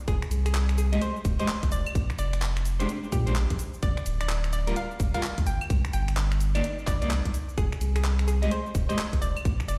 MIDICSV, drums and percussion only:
0, 0, Header, 1, 2, 480
1, 0, Start_track
1, 0, Tempo, 468750
1, 78, Time_signature, 4, 2, 24, 8
1, 10016, End_track
2, 0, Start_track
2, 0, Title_t, "Drums"
2, 79, Note_on_c, 9, 36, 120
2, 79, Note_on_c, 9, 42, 67
2, 79, Note_on_c, 9, 69, 46
2, 181, Note_off_c, 9, 42, 0
2, 181, Note_off_c, 9, 69, 0
2, 182, Note_off_c, 9, 36, 0
2, 229, Note_on_c, 9, 26, 51
2, 229, Note_on_c, 9, 69, 22
2, 319, Note_off_c, 9, 69, 0
2, 319, Note_on_c, 9, 46, 99
2, 319, Note_on_c, 9, 69, 78
2, 332, Note_off_c, 9, 26, 0
2, 422, Note_off_c, 9, 46, 0
2, 422, Note_off_c, 9, 69, 0
2, 470, Note_on_c, 9, 26, 50
2, 470, Note_on_c, 9, 42, 66
2, 470, Note_on_c, 9, 69, 33
2, 559, Note_off_c, 9, 69, 0
2, 559, Note_on_c, 9, 39, 119
2, 559, Note_on_c, 9, 69, 45
2, 572, Note_off_c, 9, 26, 0
2, 572, Note_off_c, 9, 42, 0
2, 661, Note_off_c, 9, 39, 0
2, 661, Note_off_c, 9, 69, 0
2, 709, Note_on_c, 9, 26, 65
2, 709, Note_on_c, 9, 42, 37
2, 709, Note_on_c, 9, 69, 22
2, 799, Note_off_c, 9, 69, 0
2, 799, Note_on_c, 9, 46, 104
2, 799, Note_on_c, 9, 69, 81
2, 811, Note_off_c, 9, 26, 0
2, 811, Note_off_c, 9, 42, 0
2, 901, Note_off_c, 9, 46, 0
2, 901, Note_off_c, 9, 69, 0
2, 950, Note_on_c, 9, 42, 68
2, 950, Note_on_c, 9, 69, 34
2, 1039, Note_off_c, 9, 42, 0
2, 1039, Note_off_c, 9, 69, 0
2, 1039, Note_on_c, 9, 42, 65
2, 1039, Note_on_c, 9, 69, 44
2, 1142, Note_off_c, 9, 42, 0
2, 1142, Note_off_c, 9, 69, 0
2, 1191, Note_on_c, 9, 69, 22
2, 1279, Note_off_c, 9, 69, 0
2, 1279, Note_on_c, 9, 36, 111
2, 1279, Note_on_c, 9, 46, 104
2, 1279, Note_on_c, 9, 69, 76
2, 1381, Note_off_c, 9, 46, 0
2, 1381, Note_off_c, 9, 69, 0
2, 1382, Note_off_c, 9, 36, 0
2, 1429, Note_on_c, 9, 42, 54
2, 1429, Note_on_c, 9, 69, 34
2, 1520, Note_off_c, 9, 69, 0
2, 1520, Note_on_c, 9, 39, 114
2, 1520, Note_on_c, 9, 69, 43
2, 1531, Note_off_c, 9, 42, 0
2, 1622, Note_off_c, 9, 39, 0
2, 1622, Note_off_c, 9, 69, 0
2, 1669, Note_on_c, 9, 42, 67
2, 1669, Note_on_c, 9, 69, 22
2, 1670, Note_on_c, 9, 36, 61
2, 1759, Note_off_c, 9, 69, 0
2, 1759, Note_on_c, 9, 46, 102
2, 1759, Note_on_c, 9, 69, 77
2, 1771, Note_off_c, 9, 42, 0
2, 1772, Note_off_c, 9, 36, 0
2, 1861, Note_off_c, 9, 46, 0
2, 1861, Note_off_c, 9, 69, 0
2, 1909, Note_on_c, 9, 69, 33
2, 1909, Note_on_c, 9, 75, 83
2, 1999, Note_off_c, 9, 69, 0
2, 1999, Note_on_c, 9, 36, 118
2, 1999, Note_on_c, 9, 42, 70
2, 1999, Note_on_c, 9, 69, 45
2, 2012, Note_off_c, 9, 75, 0
2, 2102, Note_off_c, 9, 36, 0
2, 2102, Note_off_c, 9, 42, 0
2, 2102, Note_off_c, 9, 69, 0
2, 2149, Note_on_c, 9, 26, 53
2, 2149, Note_on_c, 9, 69, 23
2, 2238, Note_off_c, 9, 69, 0
2, 2238, Note_on_c, 9, 46, 101
2, 2238, Note_on_c, 9, 69, 76
2, 2252, Note_off_c, 9, 26, 0
2, 2340, Note_off_c, 9, 46, 0
2, 2340, Note_off_c, 9, 69, 0
2, 2389, Note_on_c, 9, 26, 51
2, 2389, Note_on_c, 9, 42, 68
2, 2389, Note_on_c, 9, 69, 34
2, 2479, Note_off_c, 9, 69, 0
2, 2479, Note_on_c, 9, 39, 117
2, 2479, Note_on_c, 9, 69, 45
2, 2491, Note_off_c, 9, 26, 0
2, 2491, Note_off_c, 9, 42, 0
2, 2581, Note_off_c, 9, 39, 0
2, 2581, Note_off_c, 9, 69, 0
2, 2629, Note_on_c, 9, 26, 66
2, 2629, Note_on_c, 9, 42, 38
2, 2629, Note_on_c, 9, 69, 22
2, 2718, Note_off_c, 9, 69, 0
2, 2718, Note_on_c, 9, 46, 110
2, 2718, Note_on_c, 9, 69, 83
2, 2731, Note_off_c, 9, 26, 0
2, 2731, Note_off_c, 9, 42, 0
2, 2820, Note_off_c, 9, 46, 0
2, 2820, Note_off_c, 9, 69, 0
2, 2869, Note_on_c, 9, 42, 70
2, 2869, Note_on_c, 9, 69, 35
2, 2959, Note_off_c, 9, 42, 0
2, 2959, Note_off_c, 9, 69, 0
2, 2959, Note_on_c, 9, 42, 70
2, 2959, Note_on_c, 9, 69, 46
2, 3062, Note_off_c, 9, 42, 0
2, 3062, Note_off_c, 9, 69, 0
2, 3110, Note_on_c, 9, 69, 22
2, 3198, Note_off_c, 9, 69, 0
2, 3198, Note_on_c, 9, 46, 106
2, 3198, Note_on_c, 9, 69, 79
2, 3199, Note_on_c, 9, 36, 108
2, 3300, Note_off_c, 9, 46, 0
2, 3300, Note_off_c, 9, 69, 0
2, 3301, Note_off_c, 9, 36, 0
2, 3349, Note_on_c, 9, 42, 56
2, 3349, Note_on_c, 9, 69, 34
2, 3438, Note_off_c, 9, 69, 0
2, 3438, Note_on_c, 9, 39, 113
2, 3438, Note_on_c, 9, 69, 44
2, 3451, Note_off_c, 9, 42, 0
2, 3541, Note_off_c, 9, 39, 0
2, 3541, Note_off_c, 9, 69, 0
2, 3588, Note_on_c, 9, 42, 70
2, 3588, Note_on_c, 9, 69, 22
2, 3589, Note_on_c, 9, 36, 60
2, 3677, Note_off_c, 9, 69, 0
2, 3677, Note_on_c, 9, 46, 105
2, 3677, Note_on_c, 9, 69, 77
2, 3690, Note_off_c, 9, 42, 0
2, 3692, Note_off_c, 9, 36, 0
2, 3779, Note_off_c, 9, 46, 0
2, 3779, Note_off_c, 9, 69, 0
2, 3827, Note_on_c, 9, 69, 34
2, 3918, Note_off_c, 9, 69, 0
2, 3918, Note_on_c, 9, 42, 70
2, 3918, Note_on_c, 9, 69, 44
2, 3919, Note_on_c, 9, 36, 116
2, 4020, Note_off_c, 9, 42, 0
2, 4020, Note_off_c, 9, 69, 0
2, 4021, Note_off_c, 9, 36, 0
2, 4068, Note_on_c, 9, 26, 53
2, 4068, Note_on_c, 9, 69, 22
2, 4157, Note_off_c, 9, 69, 0
2, 4157, Note_on_c, 9, 46, 107
2, 4157, Note_on_c, 9, 69, 76
2, 4170, Note_off_c, 9, 26, 0
2, 4259, Note_off_c, 9, 46, 0
2, 4259, Note_off_c, 9, 69, 0
2, 4307, Note_on_c, 9, 26, 52
2, 4307, Note_on_c, 9, 42, 73
2, 4307, Note_on_c, 9, 69, 33
2, 4396, Note_off_c, 9, 69, 0
2, 4396, Note_on_c, 9, 39, 118
2, 4396, Note_on_c, 9, 69, 45
2, 4410, Note_off_c, 9, 26, 0
2, 4410, Note_off_c, 9, 42, 0
2, 4498, Note_off_c, 9, 39, 0
2, 4498, Note_off_c, 9, 69, 0
2, 4547, Note_on_c, 9, 26, 68
2, 4547, Note_on_c, 9, 42, 39
2, 4547, Note_on_c, 9, 69, 22
2, 4636, Note_off_c, 9, 69, 0
2, 4636, Note_on_c, 9, 46, 115
2, 4636, Note_on_c, 9, 69, 79
2, 4650, Note_off_c, 9, 26, 0
2, 4650, Note_off_c, 9, 42, 0
2, 4739, Note_off_c, 9, 46, 0
2, 4739, Note_off_c, 9, 69, 0
2, 4786, Note_on_c, 9, 42, 71
2, 4786, Note_on_c, 9, 69, 33
2, 4877, Note_off_c, 9, 42, 0
2, 4877, Note_off_c, 9, 69, 0
2, 4877, Note_on_c, 9, 42, 69
2, 4877, Note_on_c, 9, 69, 44
2, 4979, Note_off_c, 9, 42, 0
2, 4979, Note_off_c, 9, 69, 0
2, 5028, Note_on_c, 9, 69, 21
2, 5118, Note_off_c, 9, 69, 0
2, 5118, Note_on_c, 9, 36, 104
2, 5118, Note_on_c, 9, 46, 110
2, 5118, Note_on_c, 9, 69, 76
2, 5220, Note_off_c, 9, 36, 0
2, 5220, Note_off_c, 9, 46, 0
2, 5220, Note_off_c, 9, 69, 0
2, 5267, Note_on_c, 9, 42, 55
2, 5267, Note_on_c, 9, 69, 33
2, 5357, Note_off_c, 9, 69, 0
2, 5357, Note_on_c, 9, 39, 111
2, 5357, Note_on_c, 9, 69, 42
2, 5370, Note_off_c, 9, 42, 0
2, 5459, Note_off_c, 9, 39, 0
2, 5459, Note_off_c, 9, 69, 0
2, 5508, Note_on_c, 9, 42, 69
2, 5508, Note_on_c, 9, 69, 22
2, 5509, Note_on_c, 9, 36, 59
2, 5597, Note_off_c, 9, 69, 0
2, 5597, Note_on_c, 9, 46, 107
2, 5597, Note_on_c, 9, 69, 75
2, 5610, Note_off_c, 9, 42, 0
2, 5611, Note_off_c, 9, 36, 0
2, 5699, Note_off_c, 9, 46, 0
2, 5699, Note_off_c, 9, 69, 0
2, 5747, Note_on_c, 9, 69, 32
2, 5747, Note_on_c, 9, 75, 76
2, 5838, Note_off_c, 9, 69, 0
2, 5838, Note_on_c, 9, 36, 118
2, 5838, Note_on_c, 9, 42, 70
2, 5838, Note_on_c, 9, 69, 41
2, 5849, Note_off_c, 9, 75, 0
2, 5940, Note_off_c, 9, 36, 0
2, 5940, Note_off_c, 9, 42, 0
2, 5940, Note_off_c, 9, 69, 0
2, 5987, Note_on_c, 9, 26, 55
2, 5987, Note_on_c, 9, 69, 21
2, 6076, Note_off_c, 9, 69, 0
2, 6076, Note_on_c, 9, 46, 105
2, 6076, Note_on_c, 9, 69, 72
2, 6090, Note_off_c, 9, 26, 0
2, 6179, Note_off_c, 9, 46, 0
2, 6179, Note_off_c, 9, 69, 0
2, 6228, Note_on_c, 9, 26, 53
2, 6228, Note_on_c, 9, 42, 69
2, 6228, Note_on_c, 9, 69, 31
2, 6318, Note_off_c, 9, 69, 0
2, 6318, Note_on_c, 9, 39, 120
2, 6318, Note_on_c, 9, 69, 42
2, 6330, Note_off_c, 9, 26, 0
2, 6330, Note_off_c, 9, 42, 0
2, 6420, Note_off_c, 9, 39, 0
2, 6420, Note_off_c, 9, 69, 0
2, 6468, Note_on_c, 9, 26, 70
2, 6468, Note_on_c, 9, 42, 39
2, 6468, Note_on_c, 9, 69, 21
2, 6559, Note_off_c, 9, 69, 0
2, 6559, Note_on_c, 9, 46, 118
2, 6559, Note_on_c, 9, 69, 76
2, 6571, Note_off_c, 9, 26, 0
2, 6571, Note_off_c, 9, 42, 0
2, 6661, Note_off_c, 9, 46, 0
2, 6661, Note_off_c, 9, 69, 0
2, 6709, Note_on_c, 9, 42, 72
2, 6709, Note_on_c, 9, 69, 32
2, 6709, Note_on_c, 9, 75, 61
2, 6800, Note_off_c, 9, 42, 0
2, 6800, Note_off_c, 9, 69, 0
2, 6800, Note_on_c, 9, 42, 70
2, 6800, Note_on_c, 9, 69, 42
2, 6811, Note_off_c, 9, 75, 0
2, 6902, Note_off_c, 9, 42, 0
2, 6902, Note_off_c, 9, 69, 0
2, 6950, Note_on_c, 9, 69, 20
2, 7038, Note_off_c, 9, 69, 0
2, 7038, Note_on_c, 9, 36, 104
2, 7038, Note_on_c, 9, 39, 61
2, 7038, Note_on_c, 9, 46, 108
2, 7038, Note_on_c, 9, 69, 74
2, 7140, Note_off_c, 9, 36, 0
2, 7140, Note_off_c, 9, 39, 0
2, 7140, Note_off_c, 9, 46, 0
2, 7140, Note_off_c, 9, 69, 0
2, 7188, Note_on_c, 9, 42, 57
2, 7188, Note_on_c, 9, 69, 32
2, 7277, Note_off_c, 9, 69, 0
2, 7277, Note_on_c, 9, 39, 109
2, 7277, Note_on_c, 9, 69, 41
2, 7290, Note_off_c, 9, 42, 0
2, 7380, Note_off_c, 9, 39, 0
2, 7380, Note_off_c, 9, 69, 0
2, 7428, Note_on_c, 9, 36, 60
2, 7429, Note_on_c, 9, 42, 68
2, 7429, Note_on_c, 9, 69, 21
2, 7518, Note_off_c, 9, 69, 0
2, 7518, Note_on_c, 9, 46, 110
2, 7518, Note_on_c, 9, 69, 75
2, 7531, Note_off_c, 9, 36, 0
2, 7531, Note_off_c, 9, 42, 0
2, 7620, Note_off_c, 9, 46, 0
2, 7620, Note_off_c, 9, 69, 0
2, 7669, Note_on_c, 9, 69, 31
2, 7758, Note_off_c, 9, 69, 0
2, 7758, Note_on_c, 9, 36, 121
2, 7758, Note_on_c, 9, 42, 68
2, 7758, Note_on_c, 9, 69, 42
2, 7860, Note_off_c, 9, 36, 0
2, 7860, Note_off_c, 9, 42, 0
2, 7860, Note_off_c, 9, 69, 0
2, 7910, Note_on_c, 9, 26, 57
2, 7910, Note_on_c, 9, 69, 20
2, 7999, Note_off_c, 9, 69, 0
2, 7999, Note_on_c, 9, 46, 108
2, 7999, Note_on_c, 9, 69, 69
2, 8012, Note_off_c, 9, 26, 0
2, 8101, Note_off_c, 9, 46, 0
2, 8101, Note_off_c, 9, 69, 0
2, 8148, Note_on_c, 9, 26, 55
2, 8148, Note_on_c, 9, 42, 67
2, 8148, Note_on_c, 9, 69, 31
2, 8238, Note_off_c, 9, 69, 0
2, 8238, Note_on_c, 9, 39, 119
2, 8238, Note_on_c, 9, 69, 40
2, 8251, Note_off_c, 9, 26, 0
2, 8251, Note_off_c, 9, 42, 0
2, 8341, Note_off_c, 9, 39, 0
2, 8341, Note_off_c, 9, 69, 0
2, 8389, Note_on_c, 9, 26, 71
2, 8389, Note_on_c, 9, 42, 38
2, 8389, Note_on_c, 9, 69, 21
2, 8478, Note_off_c, 9, 69, 0
2, 8478, Note_on_c, 9, 46, 113
2, 8478, Note_on_c, 9, 69, 73
2, 8492, Note_off_c, 9, 26, 0
2, 8492, Note_off_c, 9, 42, 0
2, 8580, Note_off_c, 9, 46, 0
2, 8580, Note_off_c, 9, 69, 0
2, 8629, Note_on_c, 9, 42, 68
2, 8629, Note_on_c, 9, 69, 30
2, 8718, Note_off_c, 9, 42, 0
2, 8718, Note_off_c, 9, 69, 0
2, 8718, Note_on_c, 9, 42, 67
2, 8718, Note_on_c, 9, 69, 41
2, 8820, Note_off_c, 9, 42, 0
2, 8820, Note_off_c, 9, 69, 0
2, 8870, Note_on_c, 9, 69, 20
2, 8959, Note_off_c, 9, 69, 0
2, 8959, Note_on_c, 9, 36, 110
2, 8959, Note_on_c, 9, 46, 111
2, 8959, Note_on_c, 9, 69, 70
2, 9061, Note_off_c, 9, 36, 0
2, 9061, Note_off_c, 9, 46, 0
2, 9061, Note_off_c, 9, 69, 0
2, 9111, Note_on_c, 9, 42, 55
2, 9111, Note_on_c, 9, 69, 32
2, 9201, Note_off_c, 9, 69, 0
2, 9201, Note_on_c, 9, 39, 117
2, 9201, Note_on_c, 9, 69, 40
2, 9213, Note_off_c, 9, 42, 0
2, 9303, Note_off_c, 9, 39, 0
2, 9303, Note_off_c, 9, 69, 0
2, 9350, Note_on_c, 9, 36, 63
2, 9350, Note_on_c, 9, 42, 66
2, 9350, Note_on_c, 9, 69, 20
2, 9441, Note_off_c, 9, 69, 0
2, 9441, Note_on_c, 9, 46, 108
2, 9441, Note_on_c, 9, 69, 73
2, 9452, Note_off_c, 9, 36, 0
2, 9453, Note_off_c, 9, 42, 0
2, 9543, Note_off_c, 9, 46, 0
2, 9543, Note_off_c, 9, 69, 0
2, 9590, Note_on_c, 9, 69, 31
2, 9590, Note_on_c, 9, 75, 77
2, 9679, Note_off_c, 9, 69, 0
2, 9679, Note_on_c, 9, 36, 127
2, 9679, Note_on_c, 9, 42, 65
2, 9679, Note_on_c, 9, 69, 41
2, 9693, Note_off_c, 9, 75, 0
2, 9782, Note_off_c, 9, 36, 0
2, 9782, Note_off_c, 9, 42, 0
2, 9782, Note_off_c, 9, 69, 0
2, 9831, Note_on_c, 9, 26, 58
2, 9831, Note_on_c, 9, 69, 20
2, 9918, Note_off_c, 9, 69, 0
2, 9918, Note_on_c, 9, 46, 103
2, 9918, Note_on_c, 9, 69, 67
2, 9933, Note_off_c, 9, 26, 0
2, 10016, Note_off_c, 9, 46, 0
2, 10016, Note_off_c, 9, 69, 0
2, 10016, End_track
0, 0, End_of_file